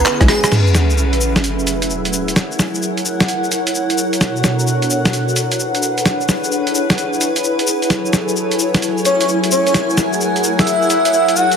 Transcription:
Already playing: analog synth pad B3 C#4 E4 G#4, ambient pad C#4 G#4 B4 E5
0.05 clap, cabasa
0.20 fm bass B1, synth stab G#3 B3 C#4 E4 G#4, kick, cross-stick, closed hi-hat, cabasa
0.28 digital synth lead G#4, cross-stick, open hi-hat
0.44 digital synth lead G#4, cross-stick, closed hi-hat, cabasa
0.52 analog synth pad F#3 C#4 E4 G#4 A4 B4, ambient pad E4, snare, closed hi-hat, crash, sub drop, cabasa
0.67 cabasa
0.75 snare, cabasa
0.90 ambient pad F#5, cabasa
0.98 cabasa
1.13 closed hi-hat, cabasa
1.21 cabasa
1.26 ambient pad G#5
1.36 snare, closed hi-hat, cabasa
1.44 closed hi-hat, cabasa
1.59 cabasa
1.67 closed hi-hat, cabasa
1.82 closed hi-hat, cabasa
1.90 cabasa
2.05 closed hi-hat, cabasa
2.13 analog synth pad A#4 C#5, cabasa
2.28 closed hi-hat, cabasa
2.36 snare, closed hi-hat, cabasa
2.51 cabasa
2.56 ambient pad A#4 C#5, snare, cabasa
2.74 cabasa
2.82 cabasa
2.97 closed hi-hat, cabasa
3.05 cabasa
3.20 snare, closed hi-hat, cabasa
3.28 closed hi-hat, cabasa
3.44 cabasa
3.52 closed hi-hat, cabasa
3.67 closed hi-hat, cabasa
3.75 cabasa
3.90 closed hi-hat, cabasa
3.98 cabasa
4.13 closed hi-hat, cabasa
4.21 analog synth pad B2 D4 F#4 A4, ambient pad D4, snare, closed hi-hat, cabasa
4.36 cabasa
4.43 ambient pad B4, snare, cabasa
4.59 cabasa
4.67 cabasa
4.82 closed hi-hat, cabasa
4.90 cabasa
5.05 snare, closed hi-hat, cabasa
5.13 closed hi-hat, cabasa
5.28 cabasa
5.36 closed hi-hat, cabasa
5.52 closed hi-hat, cabasa
5.59 cabasa
5.75 closed hi-hat, cabasa
5.83 cabasa
5.98 closed hi-hat, cabasa
6.05 analog synth pad E4 G#4 B4 C#5, ambient pad E4, snare, closed hi-hat, cabasa
6.21 cabasa
6.29 snare, cabasa
6.44 cabasa
6.52 cabasa
6.67 closed hi-hat, cabasa
6.75 cabasa
6.90 ambient pad C#5 G#5, snare, closed hi-hat, cabasa
6.98 closed hi-hat, cabasa
7.13 cabasa
7.21 closed hi-hat, cabasa
7.36 closed hi-hat, cabasa
7.44 cabasa
7.59 closed hi-hat, cabasa
7.67 cabasa
7.82 closed hi-hat, cabasa
7.90 analog synth pad F#3 E4 A4 C#5, snare, closed hi-hat, cabasa
8.05 cabasa
8.13 snare, cabasa
8.28 cabasa
8.36 cabasa
8.51 closed hi-hat, cabasa
8.59 cabasa
8.64 ambient pad F#5
8.74 snare, closed hi-hat, cabasa
8.82 closed hi-hat, cabasa
8.97 cabasa
9.05 digital synth lead C#5, closed hi-hat, cabasa
9.21 digital synth lead C#5, closed hi-hat, cabasa
9.28 cabasa
9.44 closed hi-hat, cabasa
9.51 analog synth pad G#4 A#4 C#5, digital synth lead C#5, cabasa
9.67 digital synth lead C#5, closed hi-hat, cabasa
9.74 snare, closed hi-hat, cabasa
9.90 cabasa
9.96 ambient pad A#4, snare, cabasa
10.13 cabasa
10.21 cabasa
10.36 closed hi-hat, cabasa
10.44 ambient pad C#5, cabasa
10.59 digital synth lead E5, snare, closed hi-hat, cabasa
10.67 closed hi-hat, cabasa
10.82 cabasa
10.90 closed hi-hat, cabasa
11.05 digital synth lead E5, closed hi-hat, cabasa
11.13 digital synth lead E5, cabasa
11.28 closed hi-hat, cabasa
11.36 digital synth lead F#5, cabasa
11.52 closed hi-hat, cabasa

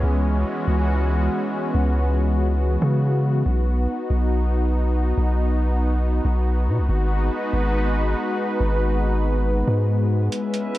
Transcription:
Already playing: analog synth pad E3 G#3 B3 C#4
0.03 808-style bass C#2, analog synth pad F#4
0.68 808-style bass C#2
1.75 808-style bass C#2
2.82 808-style bass C#3
3.46 808-style bass B1, analog synth pad D#4
4.10 808-style bass B1
5.18 808-style bass B1
6.25 808-style bass B1
6.68 808-style bass B2
6.78 808-style bass B1
6.89 808-style bass G#1, analog synth pad G#3 B3 D#4 F#4 B4
7.53 808-style bass G#1
8.60 808-style bass G#1
9.68 808-style bass G#2
10.32 synth texture C#4 B4 E5, analog synth pad C#4 E4 B4, closed hi-hat
10.54 closed hi-hat
10.75 closed hi-hat

